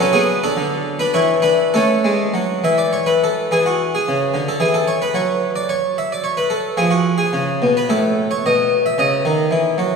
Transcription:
<<
  \new Staff \with { instrumentName = "Harpsichord" } { \time 3/4 \key cis \phrygian \tempo 4 = 110 <cis' a'>16 <b gis'>8 <d' a'>4 <d' b'>16 <e' cis''>8 <d' b'>8 | <cis' a'>4. e''16 d''16 cis''16 b'16 a'8 | gis'16 fis'8 gis'4 a'16 gis'16 a'16 cis''16 b'16 | cis''8. d''16 cis''8 e''16 d''16 cis''16 b'16 a'8 |
gis'16 fis'8 gis'4 b'16 a'8. cis''16 | dis''8. e''16 dis''8 r4. | }
  \new Staff \with { instrumentName = "Harpsichord" } { \clef bass \time 3/4 \key cis \phrygian fis4 d4 e4 | a8 gis8 fis8 e4. | e4 cis8 d8 e4 | fis2. |
eis4 cis8 b,8 a,4 | b,4 cis8 dis8 e8 fis8 | }
>>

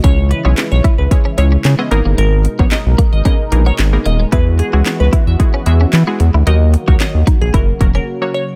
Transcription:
<<
  \new Staff \with { instrumentName = "Synth pluck" } { \time 4/4 \key cis \dorian \tempo 4 = 112 cis''8 b'8 r16 cis''16 r16 b'16 r8 cis''8. r8. | ais'8 r16 cis''16 dis''16 r8 dis''16 dis''16 r8 cis''16 r8 dis''16 r16 | b'8 gis'8 r16 b'16 r16 e''16 r8 e''8. r8. | dis''8 r16 cis''16 dis''16 r8 gis'16 ais'16 r8 ais'16 r8 cis''16 r16 | }
  \new Staff \with { instrumentName = "Synth stab" } { \time 4/4 \key cis \dorian <gis cis' e' gis' cis''>8 r16 <gis cis' e' gis' cis''>8. r8 <gis cis' e' gis' cis''>16 r16 <gis cis' e' gis' cis''>8 r16 <gis cis' e' gis' dis''>16 <ais b dis' gis' ais'>8~ | <ais b dis' gis' ais'>8 r16 <ais b dis' gis' cis''>8. r8 <ais b dis' gis' ais'>16 r16 <ais b dis' gis' ais'>8 r16 <ais b dis' gis' ais'>8 r16 | <gis b e' fis' gis'>8 r16 <gis b e' fis' gis'>8. r8 <gis b e' fis' gis'>16 r16 <gis b e' fis' gis'>8 r16 <gis b e' fis' gis'>8 r16 | <fis ais dis' fis' ais'>8 r16 <fis ais dis' fis' ais'>8. r8 <fis ais cis' fis' ais'>16 r16 <fis ais cis' fis' ais'>8 r16 <fis ais cis' fis' cis''>8 r16 | }
  \new Staff \with { instrumentName = "Clean electric guitar" } { \time 4/4 \key cis \dorian cis'16 r8 fis'16 r8 e'16 r8 cis'16 r16 cis'16 r16 b16 r16 ais16 | gis16 r8 b16 r8 ais16 r16 cis'16 r8 b16 r8 ais16 gis16 | e'16 r8 fis'16 r8 e'16 r8 cis'16 r16 cis'16 r16 b16 r16 e'16 | dis'16 r8 fis'16 r8 dis'16 r16 e'16 r8 cis'16 r4 | }
  \new Staff \with { instrumentName = "Analog synth pad" } { \clef bass \time 4/4 \key cis \dorian << { <gis e'>2.~ <gis e'>8 <dis' ais'>8~ | <dis' ais'>1 | <b fis'>1 | <ais fis'>1 | } \\ { <cis e>2.~ <cis e>8 b,8~ | b,1 | e1 | <dis fis>2 <cis fis>2 | } >> }
  \new Staff \with { instrumentName = "Analog synth bass" } { \clef bass \time 4/4 \key cis \dorian cis,8. b,,16 r16 b,,16 r16 cis,16 r8 cis,8 cis16 r16 gis,,16 g,,16 | gis,,8. ais,,16 r16 b,,16 r16 gis,,16 r8 ais,,8 gis,,8 dis,,8 | e,8. cis,16 r16 cis,16 r16 e,16 r8 e,8 e16 r16 e,16 d,16 | dis,8. cis,16 r16 dis,16 r16 ais,,16 fis,,8 e,,8 r4 | }
  \new DrumStaff \with { instrumentName = "Drums" } \drummode { \time 4/4 <hh bd>8 hh8 <hc hh sn>8 <hh bd>8 <hh bd>8 hh8 <hc hh sn>8 hh8 | hh8 hh16 bd16 <hc hh sn>8 <hh bd>8 <hh bd>8 hh8 <hc hh sn>8 hh8 | <hh bd>8 hh8 <hc hh sn>8 <hh bd>8 <hh bd>8 hh8 <hc hh sn>8 hh8 | hh8 hh16 bd16 <hc hh sn>8 <hh bd>8 <hh bd>8 <hh bd>8 r4 | }
>>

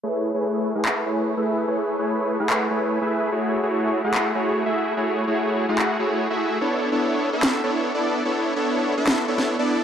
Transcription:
<<
  \new Staff \with { instrumentName = "Supersaw synth" } { \time 4/4 \key a \major \tempo 4 = 146 <a e' gis' b' cis''>8. <a e' gis' b' cis''>4 <a e' gis' b' fis''>8. <a e' gis' b' cis''>8. <a e' gis' b' e''>8. | <a e' gis' b' cis''>8. <a e' gis' b' cis''>4 <a e' gis' b' fis''>8. <a e' gis' b' cis''>8. <a e' gis' b' e''>8. | <a e' fis' gis' cis''>8. <a e' fis' gis' cis''>4 <a e' fis' gis' fis''>8. <a e' fis' gis' cis''>8. <a e' fis' gis' e''>8. | <a e' fis' gis' cis''>8. <a e' fis' gis' cis''>4 <a e' fis' gis' fis''>8. <a e' fis' gis' cis''>8. <a e' fis' gis' e''>8. |
<b d' e' a' cis''>8. <b d' e' a' cis''>4 <b d' e' a' e''>8. <b d' e' a' cis''>8. <b d' e' a' d''>8. | <b d' e' a' cis''>8. <b d' e' a' cis''>4 <b d' e' a' e''>8. <b d' e' a' cis''>8. <b d' e' a' d''>8. | }
  \new DrumStaff \with { instrumentName = "Drums" } \drummode { \time 4/4 r4 r4 hc4 r4 | r4 r4 hc4 r4 | r4 r4 hc4 r4 | r4 r4 hc4 r4 |
r4 r4 <hc sn>4 r4 | r4 r4 <hc sn>8. sn16 r4 | }
>>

